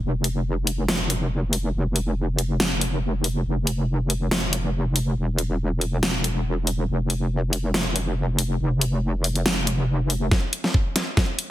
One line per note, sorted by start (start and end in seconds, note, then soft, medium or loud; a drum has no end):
0.03 1.72 F1 medium
0.24 closed hi-hat medium
0.67 closed hi-hat medium
0.89 snare loud
1.10 closed hi-hat medium
1.53 open hi-hat medium
1.74 3.44 F1 medium
1.96 closed hi-hat medium
2.39 closed hi-hat medium
2.60 snare loud
2.81 closed hi-hat medium
3.24 open hi-hat medium
3.46 5.15 F1 medium
3.67 closed hi-hat medium
4.10 closed hi-hat medium
4.31 snare loud
4.53 closed hi-hat medium
4.96 open hi-hat medium
5.17 6.87 E1 medium
5.39 closed hi-hat medium
5.81 closed hi-hat medium
6.03 snare loud
6.24 closed hi-hat medium
6.67 open hi-hat medium
6.89 8.58 F1 medium
7.10 closed hi-hat medium
7.53 closed hi-hat medium
7.74 snare loud
7.96 closed hi-hat medium
8.39 open hi-hat medium
8.60 10.29 F1 medium
8.81 closed hi-hat medium
9.24 open hi-hat medium
9.36 closed hi-hat soft
9.46 snare loud
9.67 closed hi-hat medium
10.10 open hi-hat medium
10.31 kick medium
10.31 snare soft
10.53 closed hi-hat medium
10.64 snare soft
10.74 kick medium
10.96 snare soft
10.96 closed hi-hat medium
11.17 kick medium
11.17 snare soft
11.39 closed hi-hat medium